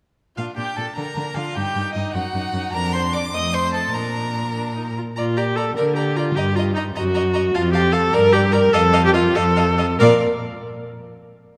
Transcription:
0.36 A#2 D4 F4 F5
0.56 A#2 D4 G4 G5
0.76 A#2 D4 A4 A5
0.96 D3 D4 A#4 A#5
1.16 D3 D4
1.35 D3 D4 F4 F5
1.55 G2 D#4 G4 G5
1.75 G2 D#4
1.93 G2 D#4 D#5
2.13 F#2 D#4 F#4 F#5
2.34 F#2 D#4
2.53 F#2 D#4
2.72 F2 D4 A#4 A#5
2.93 C5 C6
3.13 D5 D6
3.33 F2 A3 D#5 D#6
3.54 C5 C6
3.74 A4 A5
3.94 A#2 D4 A#4 A#5
4.55 D4
4.76 D#4
4.97 F4
5.16 A#2 F4 D5 A#5
5.37 G4 D5 A#5
5.56 A4 D5 A#5
5.76 D3 A#4 D5 A#5
5.96 G4 D5 A#5
6.16 F4 D5 A#5
6.36 G2 G4 D#5 A#5
6.55 F4 D#5 A#5
6.74 D#4 D#5 A#5
6.94 F#2 F#4 D#5 A#5
7.14 D#5 A#5
7.33 D#5 A#5
7.54 F2 F4 F5 A5
7.73 G4 F5 A5
7.92 A4 F5 A5
8.13 G2 A#4 D5 A#5
8.33 G4 D5 A#5
8.52 A#4 D5 A#5
8.73 F2 A4 D#5 F5
8.93 D#5 F5
9.05 G4
9.14 F4 D#5 F5
9.35 F2 A4 D#5 F5
9.56 D#5 F5
9.78 D#5 F5
9.99 A#2 A#4 D5 F5

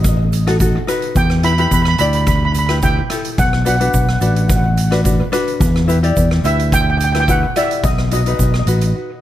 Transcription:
Already playing: A1 D#4 F#4 B4
0.02 D#5, kick, cross-stick, closed hi-hat, shaker
0.09 D#5
0.17 D#5
0.32 closed hi-hat, shaker
0.47 D#4 F#4 A4, cross-stick, closed hi-hat
0.60 D#4 F#4 A4, kick, closed hi-hat, shaker
0.87 D#4 F#4 B4, cross-stick, closed hi-hat, shaker
1.02 closed hi-hat
1.15 E2 G5, kick, closed hi-hat, shaker
1.30 cross-stick
1.43 E4 G4 B4 B5, closed hi-hat
1.52 B5
1.58 E4 G4 B4 B5, closed hi-hat
1.67 E2 B5
1.71 B5, kick, closed hi-hat, shaker
1.82 B5, cross-stick
1.88 B5
1.98 D2 E4 G4 D5 B5, closed hi-hat, shaker
2.06 B5
2.13 B5, closed hi-hat
2.21 B5
2.27 B5, kick, cross-stick, closed hi-hat, shaker
2.36 B5
2.45 B5
2.52 B5, closed hi-hat, shaker
2.59 B5
2.67 E4 G4 B4 B5, cross-stick, closed hi-hat
2.82 E4 G4 B4 G5, kick, closed hi-hat, shaker
3.10 E4 G4 A4, cross-stick, closed hi-hat, shaker
3.25 closed hi-hat
3.38 B1 F#5, kick, closed hi-hat, shaker
3.53 cross-stick
3.65 D4 F#4 B4 F#5, closed hi-hat, shaker
3.76 D4 F#5
3.80 F#4 B4 F#5, closed hi-hat
3.90 B1 F#5, kick, closed hi-hat, shaker
3.97 F#5
4.05 F#5, cross-stick
4.13 F#5
4.20 A1 D4 F#4 B4 F#5, closed hi-hat, shaker
4.27 F#5
4.35 F#5, closed hi-hat
4.42 F#5
4.48 F#5, kick, cross-stick, closed hi-hat, shaker
4.56 F#5
4.64 F#5
4.77 closed hi-hat, shaker
4.91 D4 F#4 B4, cross-stick, closed hi-hat
5.04 D4 F#4 B4, kick, closed hi-hat, shaker
5.32 D4 F#4 B4, cross-stick, closed hi-hat, shaker
5.48 closed hi-hat
5.60 E2, kick, closed hi-hat, shaker
5.76 cross-stick
5.88 E4 G4 B4, closed hi-hat, shaker
6.03 E4 G4 D5, closed hi-hat
6.17 E2, kick, closed hi-hat, shaker
6.31 cross-stick
6.44 D2 E4 G4 B4 E5, closed hi-hat, shaker
6.60 closed hi-hat
6.72 G5, kick, cross-stick, closed hi-hat, shaker
6.81 G5
6.90 G5
6.98 G5, closed hi-hat, shaker
7.04 G5
7.13 E4 G4 B4 G5, cross-stick, closed hi-hat
7.20 G5
7.28 E4 G4 B4 F#5, kick, closed hi-hat, shaker
7.56 E4 G4 D5 E5, cross-stick, closed hi-hat, shaker
7.71 closed hi-hat
7.83 B1 D#5, kick, closed hi-hat, shaker
7.98 cross-stick
8.11 D#4 F#4 B4 D#5, closed hi-hat, shaker
8.21 D#5
8.26 D#4 F#4 B4 D#5, closed hi-hat
8.37 B1 D#5, kick, closed hi-hat, shaker
8.43 D#5
8.52 D#5, cross-stick
8.59 D#5
8.66 A1 D#4 F#4 B4, closed hi-hat, shaker
8.81 closed hi-hat

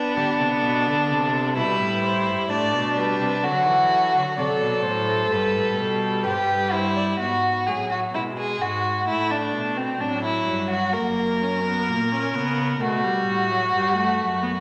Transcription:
Already playing: B3 D4 B4
0.16 D3 G4
0.40 C3 A4
0.63 B2
0.86 D3
1.10 C3
1.56 B2 G3 E4 B4
1.79 A2
2.04 C5
2.26 G2
2.50 A2 A3 D4 D5
2.73 B2
2.96 G3 B4
3.20 C3
3.43 D3 F#3 F#4 A4
3.67 E3
4.14 D3
4.37 C3 A4 D5
4.61 B2
4.83 A2 C5
5.32 G2 G3 B4
5.55 A2
5.78 B2 A4
6.23 G2 G4 B4
6.30 C5
6.37 B4
6.73 E4 C5
6.96 D5
7.20 G#2 B3 F#4
7.67 A2 F#3 G#4
7.91 F#4
8.15 B2 G#3 E4
8.38 G#4
8.61 G#2 F#4
9.08 A2 A3 E4
9.31 D4
9.55 B2
9.78 C4
10.01 A2 F#3 D4
10.24 E4
10.48 G2
10.71 F#4
10.93 F#2 A#3 A#4
11.42 C#4
11.65 B3
11.88 A#2 A#3
12.12 C#4
12.34 C#3 B3
12.80 B2 A3 F#4
13.03 G3
13.27 A2
13.50 F#3
13.73 G2 G3
13.96 A3
14.20 F#2
14.43 B3

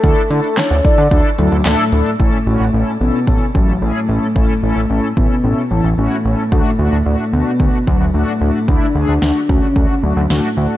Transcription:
Already playing: A4
0.04 D2 D4 E4 A4, kick, closed hi-hat
0.30 D3 D4 E4 A4, closed hi-hat
0.44 closed hi-hat
0.57 D4 E4 A4 C#5, snare, clap, closed hi-hat
0.71 D2
0.84 D4 E4 A4 D5, kick, closed hi-hat
0.98 D3, closed hi-hat
1.11 D2 D4 E4 A4, kick, closed hi-hat
1.38 D2 F#3 D4 E4 A4, closed hi-hat
1.52 D2, closed hi-hat
1.65 D2 A3 D4 E4 A4, snare, clap, closed hi-hat
1.92 D2 D4 E4 A4, closed hi-hat
2.06 closed hi-hat
2.19 A1 A3 C#4 E4 A4, kick
2.46 A1 C#4 E4 F#4
2.60 A1
2.74 A1 C#4 E4 A4
3.01 A1 B3 C#4 E4 A4
3.27 A1 C#4 E4 A4, kick
3.54 A1 F#3 C#4 E4 A4, kick
3.68 A1
3.81 A1 A3 C#4 E4 G#4
4.09 A1 C#4 E4 A4
4.35 A1 A3 C#4 E4 A4, kick
4.63 A1 C#4 E4 A4
4.76 A1
4.90 A1 C#4 E4 A4
5.17 A1 B3 C#4 E4 A4, kick
5.44 A1 C#4 E4 A4
5.71 A1 E3 C#4 E4 A4
5.84 A1
5.98 A1 A3 C#4 E4 F#4
6.25 A1 C#4 E4 A4
6.52 D2 A3 D4 F#4, kick
6.79 D2 A3 D4 F#4
6.92 D2
7.06 D2 A3 D4 F#4
7.33 D2 A3 B3 D4 F#4
7.60 D2 A3 D4 F#4, kick
7.87 D2 F#3 A3 D4 F#4, kick
8.00 D2
8.14 D2 A3 D4 F#4
8.41 D2 A3 D4 F#4
8.68 D2 A3 D4 E4, kick
8.95 D2 A3 D4 G#4
9.09 D2
9.22 D2 A3 D4 F#4, snare
9.49 D2 A3 C#4 D4 F#4, kick
9.76 D2 A3 D4 F#4, kick
10.03 D2 F#3 A3 D4 F#4
10.17 D2
10.30 D2 A3 D4 F#4, snare
10.57 D2 A3 D4 F#4

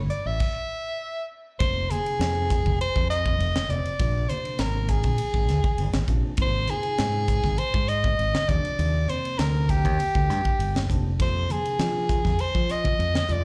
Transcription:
0.10 D5, muted fingered electric bass stroke, hi-hat pedal, ride
0.26 A1 E5
0.40 kick, crash
1.59 F1 C3 F3 A#3 D#4 C5, kick, ride
1.90 C3 F3 A#3 D#4 G#4, hi-hat pedal, ride, high conga
2.06 ride
2.19 F2, snare, ride
2.50 kick, hi-hat pedal, ride, low conga
2.66 F1, kick, high conga
2.81 C5, ride
2.96 F2, kick
3.10 D#5, snare, hi-hat pedal, ride
3.26 kick, high conga, low conga
3.38 F1, ride
3.56 snare, high conga
3.68 F1 C3 F3 A#3 C4 D5, hi-hat pedal, ride, low conga
3.85 muted fingered electric bass stroke, ride
3.99 A#1 C3 F3 A#3 D4, kick, ride
4.28 C3 F3 A#3 D4 C5, hi-hat pedal, ride, high conga
4.45 ride
4.59 G#1 A#4, snare, ride
4.88 G#4, kick, hi-hat pedal, ride, low conga
5.03 A#1, kick, ride, high conga
5.18 ride
5.34 G#1, kick
5.49 D2, snare, hi-hat pedal, ride
5.64 kick, high conga, low conga
5.78 G#1, ride
5.93 G#1, snare, high conga
6.08 A#1 C3 F3 A#3 D4, kick, hi-hat pedal, ride, low conga
6.37 G#1 C3 F3 A#3 D#4, kick, ride
6.42 C5
6.67 C3 F3 A#3 D#4 G#4, hi-hat pedal, ride, high conga
6.83 ride
6.98 G#2, snare, ride
7.28 kick, hi-hat pedal, ride, low conga
7.44 G#1, kick, snare, high conga
7.58 C5, ride
7.74 G#2, kick
7.88 D#5, hi-hat pedal, ride
8.04 kick, high conga, low conga
8.19 G#1, ride
8.34 snare, high conga
8.48 D#2 C3 F3 A#3 D4 D5, kick, hi-hat pedal, ride, low conga
8.65 ride
8.79 D#2, ride
9.08 C3 F3 A#3 C4 C5, hi-hat pedal, ride, high conga
9.25 ride
9.38 D2 A#4, snare, ride
9.69 G4, kick, hi-hat pedal, ride, low conga
9.84 D#2, kick, ride, high conga
9.99 ride, high conga
10.15 D2, kick
10.30 G2, snare, hi-hat pedal, ride
10.45 muted fingered electric bass stroke, kick, high conga, low conga
10.59 G1, ride
10.75 snare, high conga
10.89 F1 C3 F3 A#3 D4, kick, hi-hat pedal, ride, low conga
11.19 F2 C3 F3 A#3 D#4 C5, kick, ride
11.49 C3 F3 A#3 D4 G#4, hi-hat pedal, ride, high conga
11.65 ride
11.79 F3, snare, ride
12.09 kick, hi-hat pedal, ride, low conga
12.24 F2, kick, snare, high conga
12.39 C5, ride
12.55 F3, kick
12.69 D#5, snare, hi-hat pedal, ride
12.84 kick, high conga, low conga
12.99 F2, ride
13.14 snare, high conga
13.28 F2 C3 F3 A#3 F4 D5, hi-hat pedal, ride, low conga

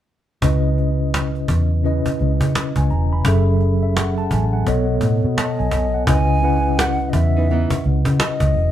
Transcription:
0.42 C#2 C#3 C#4 E4 B4 D#5, cajon bass
0.78 cajon slap
1.00 cajon slap
1.14 cajon slap
1.35 cajon slap
1.48 E2, cajon bass
1.83 C#3 C#4 E4 B4 D#5, cajon slap
2.06 cajon bass
2.19 C#2, cajon slap
2.41 C#3, cajon bass
2.55 cajon slap
2.76 C#2 G#5, cajon bass, cajon slap
2.90 E1 A#5, cajon slap
3.13 B5
3.25 F#1 F#3 C#4 G#4 A4 E5, cajon bass
3.61 cajon slap
3.82 E5, cajon slap
3.96 F#5, cajon slap
4.17 A5, cajon slap
4.31 A1 G#5, cajon bass
4.53 F#5
4.65 B1 B2 B3 A4 C#5 D#5, cajon bass
5.01 A2, cajon bass
5.23 B2, cajon slap
5.37 D#5 A5, cajon slap
5.59 B1 G#5, cajon slap
5.71 B1, cajon bass
5.94 F#5
6.07 C#2 C#3 C#4 E4 B4 D#5 G#5, cajon bass
6.42 C#3 C#4 E4 B4 F#5, cajon slap
6.65 cajon slap
6.79 F#5, cajon slap
7.00 cajon slap
7.10 D#5 E5, cajon bass
7.14 E2
7.36 E3 B3 D#4
7.50 E3 B3 D#4, cajon slap
7.70 cajon bass
7.84 C#2, cajon slap
8.05 C#3, cajon bass
8.20 D#5, cajon slap
8.40 C#2, cajon bass, cajon slap
8.54 E1, cajon slap

